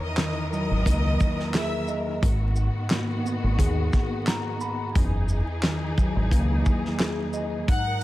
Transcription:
Already playing: E2 D#3 E3 A#4
0.03 D#5 D#6
0.17 D#3, snare, clap, closed hi-hat
0.53 F#3 D#5 D#6, shaker
0.71 G#1
0.86 C#2 A#3, kick, closed hi-hat
1.20 kick, closed hi-hat, shaker
1.40 snare
1.54 G#4 E5 E6, snare, clap, closed hi-hat
1.88 D#5, shaker
2.22 G#1 G#2 D#3 B3 F#4, kick, closed hi-hat
2.56 shaker
2.90 A#3, snare, clap, closed hi-hat
3.25 B3, shaker
3.44 G#1
3.59 D#2 G#4, kick, closed hi-hat
3.93 kick, snare, shaker
4.27 A#5, snare, clap, closed hi-hat
4.61 B5, shaker
4.95 F#1 E2 E3 D#4 G#4, kick, closed hi-hat
5.29 shaker
5.63 D#3, snare, clap, closed hi-hat
5.98 F#3, kick, shaker
6.16 G#1
6.31 C#2 A#3, kick, closed hi-hat
6.66 kick, shaker
6.85 snare
6.99 G#4, snare, clap, closed hi-hat
7.33 D#5, shaker
7.68 G#2 F#3 D#4 A#4 F#5 F#6, kick, closed hi-hat

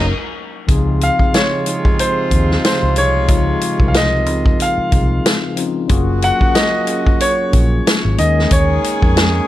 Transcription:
Already playing: F#1 A#3 C#4 D#4 A#4 D#5 D#6
0.67 C#2 C3 C#3 F3 G#3 C4 D#4 F4 G#4, kick, closed hi-hat
1.01 F5, closed hi-hat
1.19 C#3 F3 C4 D#4 G#4, kick
1.34 C#5, snare, closed hi-hat
1.65 C#3 F3 G#3 D#4 G#4, closed hi-hat
1.85 kick
1.99 C5, closed hi-hat
2.29 D#2 C#3 F3 C4 D#4 G#4, kick, closed hi-hat
2.51 snare
2.65 C5, snare, closed hi-hat
2.83 C#2
2.96 C2 C#5, closed hi-hat
3.27 C#2 C#3 F3 G#3 D#4 F4, kick, closed hi-hat
3.61 closed hi-hat
3.79 C2 F3 C4 D#4 F4 A#4, kick
3.88 F5
3.94 D#5, snare, closed hi-hat
4.25 C#2 C#3 F3 C4 D#4 F4, closed hi-hat
4.46 kick
4.60 F5, closed hi-hat
4.78 muted fingered electric bass stroke
4.91 C2 F3 C4 D#4 F4 G#4, kick, closed hi-hat
5.26 snare, closed hi-hat
5.55 F3 C4 C#4 D#4 F4, closed hi-hat
5.88 F#1 C#3 F#3 A#3 C#4 F4 F#4 G#4, kick, closed hi-hat
6.22 F#5, closed hi-hat
6.39 F#3 A#3 C#4 F4 G#4, kick
6.55 D#5, snare, closed hi-hat
6.85 F#3 A#3 C#4 F4 G#4, closed hi-hat
7.07 kick
7.20 C#5, closed hi-hat
7.50 A#1 F#3 A#3 C#4 F4 G#4, kick, closed hi-hat
7.87 snare, closed hi-hat
8.05 G#1
8.17 D#2 D#3 G#3 A#3 C#4 D#4 G#4 A#4 D#5, closed hi-hat
8.39 snare
8.51 D#2 C#5, kick, closed hi-hat
8.84 closed hi-hat
9.01 F2 G#3 A#3 C#4 D#4 A#4, kick
9.17 snare, closed hi-hat

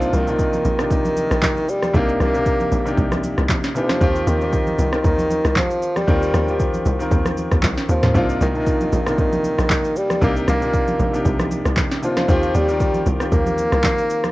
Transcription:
Already playing: C2 C3 F3 A#3 D4 D#4 F4
0.02 shaker
0.13 C2 D#3, high conga, shaker
0.27 C3 A#3 D4 D#4 F4, shaker
0.39 kick, shaker
0.53 high conga, shaker
0.65 A#1, low conga, shaker
0.78 C3 A#3 D4 D#4 G4, cross-stick, shaker
0.91 C2 D#3, kick, low conga, shaker
1.05 high conga, shaker
1.16 high conga, shaker
1.31 A#1, cross-stick, shaker
1.42 kick, clap, high conga, low conga, shaker
1.57 high conga, shaker
1.69 G3, shaker
1.82 cross-stick, high conga, shaker
1.93 C2 C3 A#3 D4 D#4 G4, kick, low conga, shaker
2.09 shaker
2.20 C2 A#3, cross-stick, high conga, shaker
2.34 C3 A#3 D4 D#4 G4, shaker
2.46 kick, shaker
2.60 high conga, shaker
2.72 A#1, low conga, shaker
2.85 C3 A#3 D4 D#4 G4, shaker
2.97 C2, kick, low conga, shaker
3.12 cross-stick, high conga, shaker
3.23 high conga, shaker
3.38 C2, cross-stick, shaker
3.49 kick, clap, high conga, low conga, shaker
3.64 snare, high conga, shaker
3.75 C3 F3 A#3 D4 D#4 G4, shaker
3.89 cross-stick, snare, high conga, shaker
4.00 D#2 D#3 C4 F4 G4, kick, low conga, shaker
4.15 shaker
4.27 D#2 D#3, high conga, shaker
4.41 D#3 C4 F4 G4, shaker
4.53 kick, shaker
4.67 high conga, shaker
4.79 C2, low conga, shaker
4.92 D#3 C4 F4 A#4, cross-stick, shaker
5.04 D#2 D#3, kick, low conga, shaker
5.19 high conga, shaker
5.30 high conga, shaker
5.45 C2, cross-stick, shaker
5.56 F3, kick, clap, high conga, low conga, shaker
5.71 high conga, shaker
5.82 shaker
5.96 G3, cross-stick, high conga, shaker
6.07 D#2 D#3 C4 F4 A#4, kick, low conga, shaker
6.22 shaker
6.34 D#2, cross-stick, high conga, shaker
6.47 D#3 C4 F4 G4, shaker
6.60 kick, shaker
6.74 high conga, shaker
6.86 C2, low conga, shaker
6.99 D#3 C4 F4 A#4, shaker
7.11 D#2, kick, low conga, shaker
7.25 cross-stick, high conga, shaker
7.37 high conga, shaker
7.52 D#2, kick, cross-stick, shaker
7.63 C2, kick, clap, high conga, low conga, shaker
7.77 snare, high conga, shaker
7.88 D#2 D#3 F3 C4 F4 A#4, shaker
8.03 D#2, cross-stick, snare, mid tom, high conga, shaker
8.14 C2 C3 F3 A#3 D4 D#4 F4, kick, low conga, shaker
8.29 shaker
8.41 C2 D#3, high conga, shaker
8.54 C3 A#3 D4 D#4 F4, shaker
8.67 kick, shaker
8.81 high conga, shaker
8.93 A#1, low conga, shaker
9.06 C3 A#3 D4 D#4 F4, cross-stick, shaker
9.18 C2 D#3, kick, low conga, shaker
9.32 high conga, shaker
9.44 high conga, shaker
9.59 A#1, cross-stick, shaker
9.70 kick, clap, high conga, low conga, shaker
9.84 high conga, shaker
9.96 G3, shaker
10.10 cross-stick, high conga, shaker
10.21 C2 C3 A#3 D4 D#4 G4, kick, low conga, shaker
10.36 shaker
10.48 C2 A#3, cross-stick, high conga, shaker
10.61 C3 A#3 D4 D#4 F4, shaker
10.73 kick, shaker
10.88 high conga, shaker
10.99 A#1, low conga, shaker
11.13 C3 A#3 D4 D#4 G4, shaker
11.25 C2, kick, low conga, shaker
11.39 cross-stick, high conga, shaker
11.51 high conga, shaker
11.65 C2, cross-stick, shaker
11.77 kick, clap, high conga, low conga, shaker
11.91 snare, high conga, shaker
12.02 C3 F3 A#3 D4 D#4 F4, shaker
12.17 cross-stick, snare, high conga, shaker
12.28 D#2 D#3 C4 F4 G4, kick, low conga, shaker
12.43 shaker
12.55 D#2 G3, high conga, shaker
12.68 D#3 C4 F4 A#4, shaker
12.80 kick, shaker
12.94 high conga, shaker
13.06 C2, low conga, shaker
13.20 D#3 C4 F4 G4, cross-stick, shaker
13.32 D#2 A#3, kick, low conga, shaker
13.46 high conga, shaker
13.58 high conga, shaker
13.72 C2, cross-stick, shaker
13.84 kick, clap, high conga, low conga, shaker
13.98 high conga, shaker
14.10 shaker
14.24 cross-stick, high conga, shaker

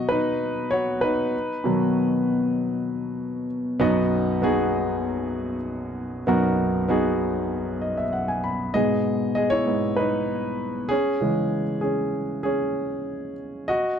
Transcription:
Already playing: B2 D#3 F#3 F#4 C#5 D#5
0.09 D#4 B4
0.71 F#4 C#5
1.01 D#4 B4
1.64 B2 D#3 F#3
3.80 B1 F#2 B3 D#4 F#4 D#5
4.42 B3 D#4 F#4 G#4
6.27 B1 F#2 B3 D#4 F#4 A#4
6.88 B3 D#4 F#4 G#4
7.82 D#5
7.98 E5
8.13 F#5
8.28 G#5
8.44 B5
8.74 G#2 B2 B3 G#4 D#5
9.35 G#4 D#5
9.50 E4 C#5
9.66 G#2 B3 D#4
9.96 D#4 B4
10.89 C#4 G#4
11.20 C#3 E3 G#3
11.81 C#4 G#4
12.43 C#4 G#4
13.68 F#4 D#5

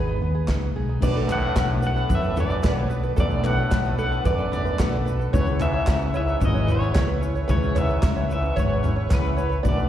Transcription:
Already playing: G#1 G#2 D#3 G#3 B3 D#4 G#4 B4
0.08 D#4
0.20 D#2 G#3 B3 D#4 G#4
0.35 G#4
0.47 C#2 G#3 B3 D#4 G#4, kick, snare, clap
0.62 B3
0.74 B1 G#3 B3 D#4 G#4
0.89 D#4
1.00 B1 F#2 B2 F#3 A3 B3 D4 F#4 B4 D5 A5 D6, kick, floor tom, crash, shaker
1.16 A4, shaker
1.28 A2 A3 B3 D4 F#4 B4, clap, floor tom, shaker
1.32 F#5
1.42 B4
1.54 B1 B2 F#3 A3 D4 F#4 B4, kick, snare, clap, shaker
1.81 A3 D4 F#4 B4, shaker
1.85 A2 F#5
1.96 A4, shaker
2.08 F#2 A3 B3 D4 F#4 B4, kick, floor tom, shaker
2.12 A2 E5
2.22 B4, shaker
2.35 F#2 A3 D4 F#4 A4 B4, floor tom, shaker
2.40 D5
2.50 B3, shaker
2.63 B1 B2 F#3 A3 D4 F#4 B4, kick, snare, clap, shaker
2.73 F2 A4 C#5
2.89 A3 B3 D4 F#4 B4, shaker
3.03 B4, shaker
3.16 B1 F#2 B2 F#3 A3 B3 D4 F#4 A4 B4 D5, kick, floor tom, shaker
3.20 D5
3.30 B3, shaker
3.43 A2 A3 D4 F#4 B4 F#5, clap, floor tom, shaker
3.56 A4
3.71 B1 B2 F#3 A3 B3 D4 F#4 B4, kick, snare, clap, shaker
3.85 B4, shaker
3.98 A2 A3 D4 F#4 A4 B4 F#5, shaker
4.12 B3, shaker
4.24 F#2 A3 D4 F#4 B4 D5, kick, floor tom, shaker
4.38 A4, shaker
4.51 F#2 B3 D4 F#4 B4 D5, floor tom, shaker
4.55 A3
4.65 B4, shaker
4.79 B1 B2 F#3 A3 D4 F#4 A4 B4, kick, snare, clap, shaker
4.92 B3
5.06 A3 D4 F#4 B4, shaker
5.19 A4, shaker
5.32 C#2 E2 C#3 G#3 B3 C#4 E4 B4 C#5 E5 C#6, kick, floor tom, shaker
5.47 B4, shaker
5.60 G#2 B3 C#4 E4 B4 E5, clap, floor tom, shaker
5.74 C#5
5.87 C#2 C#3 G#3 B3 E4 B4, kick, snare, clap, shaker
6.01 shaker
6.14 G#2 B3 E4 B4 C#5 E5, shaker
6.28 B4, shaker
6.40 G#1 G#2 G#3 B3 C#4 E4 B4, kick, floor tom, shaker
6.45 D#5
6.54 C#5, shaker
6.67 E2 B3 E4 B4, floor tom, shaker
6.72 C#5
6.80 C#4, shaker
6.94 C#2 C#3 G#3 B3 E4 B4 C#5, kick, snare, clap, shaker
7.08 B4
7.21 C#4 E4 B4, shaker
7.25 B3
7.35 C#5, shaker
7.47 C#2 E2 C#3 G#3 B3 C#4 E4 B4 C#5, kick, floor tom, shaker
7.62 C#4, shaker
7.75 G#2 B3 E4 B4 C#5 E5, clap, floor tom, shaker
7.89 B4, shaker
8.03 C#2 C#3 G#3 B3 C#4 E4 B4, kick, snare, clap, shaker
8.16 C#5, shaker
8.29 G#2 B3 E4 B4 E5, shaker
8.43 C#4, shaker
8.56 G#1 E2 G#3 B3 E4 B4 C#5, kick, floor tom, shaker
8.69 B4
8.83 B3 C#4 E4 B4, floor tom, shaker
8.96 C#5
9.09 C#2 C#3 G#3 B3 E4 B4, kick, snare, clap, shaker
9.14 E2 B4
9.23 C#4, shaker
9.37 B3 E4 B4 C#5, shaker
9.49 B4, shaker
9.63 B1 B2 F#3 A3 B3 D4 F#4 B4 D5 A5 D6, kick, floor tom, shaker
9.67 F#2 B4 D5
9.77 B4, shaker

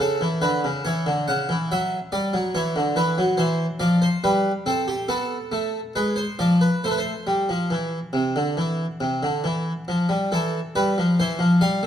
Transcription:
0.00 C#3 A4
0.21 E3
0.42 D3 B4
0.64 C#3
0.85 E3 C#5
1.06 D3
1.28 C#3 F#5
1.49 E3
1.72 F#3 E5
2.12 G3 D5
2.34 F#3
2.55 E3 C#5
2.76 D3
2.96 E3 B4
3.18 F#3
3.37 E3 C5
3.80 F3 D5
4.02 C5
4.24 G3 B4
4.66 C4 A4
4.88 G4
5.08 B3 A4
5.52 A3
5.96 G#3 B4
6.16 C5
6.39 F3 D5
6.61 B4
6.84 A3 C5
6.91 B4
6.98 C5
7.27 G3
7.49 F3
7.71 E3
8.13 C3
8.36 D3
8.57 E3
9.01 C3
9.23 D3
9.44 E3
9.88 F3
10.09 G3
10.32 E3 A4
10.76 G3 B4
10.98 F3
11.20 E3 C5
11.39 F3
11.61 G3 F5
11.83 A3

